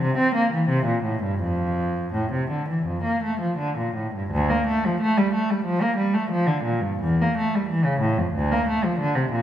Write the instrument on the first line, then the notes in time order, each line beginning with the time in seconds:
cello
0.00 C3
0.18 C4
0.35 A#3
0.53 E3
0.69 C3
0.86 A#2
1.04 A2
1.23 G2
1.41 F2
2.14 A2
2.32 C3
2.51 D3
2.69 E3
2.86 F2
3.04 A#3
3.24 A3
3.41 F3
3.59 D3
3.78 A#2
3.96 A2
4.15 G2
4.31 D2
4.50 A#3
4.67 A3
4.85 F3
5.01 A3
5.17 G3
5.34 A3
5.50 G3
5.66 F3
5.82 A#3
5.97 G3
6.14 A3
6.31 F3
6.47 D3
6.64 A#2
6.81 G2
7.00 E2
7.21 A#3
7.38 A3
7.55 G3
7.69 E3
7.85 C#3
8.01 A2
8.18 F2
8.34 D2
8.52 A#3
8.68 A3
8.84 F3
8.99 D3
9.15 C3
9.32 A#2